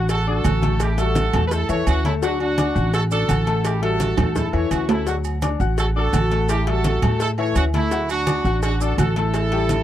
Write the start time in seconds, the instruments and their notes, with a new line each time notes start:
Already playing: upright bass A1, upright piano F#4 F#5 F#6
0.09 horn section F#4 A4, cowbell, high conga, low agogo, maracas
0.27 upright piano D4 D5 D6, horn section F#4 A4, high conga
0.44 upright bass A1, upright piano F#4 F#5 F#6, cowbell, high conga, low timbale, low agogo, maracas
0.62 upright piano A3 A4 A5, cowbell, high conga, maracas
0.80 horn section E4 G4, cowbell, high conga, low agogo, maracas
0.98 upright piano G3 A4 E5, horn section F#4 A4, cowbell, high conga, maracas
1.15 cowbell, high conga, low agogo, maracas
1.33 upright bass E2, upright piano A3 A4 A5, cowbell, high conga, low conga, low agogo, maracas
1.48 horn section B4, cowbell, high conga, maracas
1.53 horn section E4 A4
1.69 upright bass E2, upright piano E3 E4 E5, horn section A4 C#5, high conga, low agogo, maracas
1.87 upright bass D2, horn section C#4 F#4, cowbell, high conga, low agogo, maracas
2.04 upright piano A3 A4 A5, horn section C#4 E4, cowbell, high conga, maracas
2.22 upright piano F#3 F#4 F#5, horn section D4 F#4, cowbell, maracas
2.40 horn section D4 F#4, high conga, low agogo
2.58 upright piano D4 D5 D6, cowbell, high conga, low agogo, maracas
2.75 upright bass A1, upright piano F#4 F#5 F#6, high conga, maracas
2.93 horn section F#4 A4, cowbell, high conga, low agogo, maracas
3.11 upright piano D4 D5 D6, horn section F#4 A4, high conga, maracas
3.28 upright bass A1, upright piano F#4 F#5 F#6, cowbell, high conga, low agogo, maracas
3.47 upright piano A3 A4 A5, cowbell, maracas
3.64 horn section E4 G4, cowbell, high conga, low agogo, maracas
3.82 upright piano G3 A4 E5, horn section F#4 A4, cowbell, high conga
4.00 cowbell, high conga, low agogo, maracas
4.18 upright bass E2, upright piano A3 A4 A5, cowbell, high conga, low conga, high timbale, low agogo, maracas
4.36 horn section E4 A4, cowbell, high conga, low conga, high timbale, maracas
4.53 upright bass E2, upright piano E3 E4 E5, horn section A4 C#5, high conga, low agogo
4.71 upright bass D2, horn section C#4 F#4, cowbell, high conga, low agogo, maracas
4.89 upright piano A3 A4 A5, horn section C#4 E4, cowbell, low timbale, maracas
5.06 upright piano F#3 F#4 F#5, horn section D4 F#4, cowbell, high conga, maracas
5.24 high conga, low agogo, maracas
5.42 upright piano D4 D5 D6, cowbell, high conga, low agogo, maracas
5.60 upright bass A1, upright piano F#4 F#5 F#6, maracas
5.77 horn section F#4 A4, cowbell, high conga, low agogo, maracas
5.96 upright piano D4 D5 D6, horn section F#4 A4, high conga
6.13 upright bass A1, upright piano F#4 F#5 F#6, cowbell, high conga, low timbale, low agogo, maracas
6.31 upright piano A3 A4 A5, cowbell, maracas
6.48 horn section E4 G4, cowbell, high conga, low agogo, maracas
6.67 upright piano G3 A4 E5, horn section F#4 A4, cowbell, high conga
6.84 cowbell, high conga, low agogo, maracas
7.02 upright bass A2, upright piano A3 A4 A5, cowbell, high conga, low conga, low agogo, maracas
7.20 horn section E4 A4, cowbell, maracas
7.38 upright piano E3 E4 E5, horn section A4 C#5, high conga, low agogo
7.55 upright bass D2, horn section C#4 F#4, cowbell, high conga, low agogo, maracas
7.74 upright piano A3 A4 A5, horn section A3 E4, cowbell, high conga, maracas
7.91 upright piano F#3 F#4 F#5, cowbell, maracas
8.09 horn section D4 F#4, high conga, low agogo, maracas
8.27 upright piano D4 D5 D6, cowbell, high conga, low agogo, maracas
8.44 upright bass A1, upright piano F#4 F#5 F#6, high conga, maracas
8.63 horn section D4 F#4, cowbell, high conga, low agogo, maracas
8.81 upright piano D4 D5 D6, horn section F#4 A4, high conga, maracas
8.98 upright bass A1, upright piano F#4 F#5 F#6, horn section F#4 A4, cowbell, high conga, low timbale, low agogo, maracas
9.16 upright piano A3 A4 A5, horn section E4 A4, cowbell, maracas
9.34 cowbell, high conga, low agogo, maracas
9.52 upright piano G3 G4 G5, cowbell, high conga
9.69 cowbell, high conga, low agogo, maracas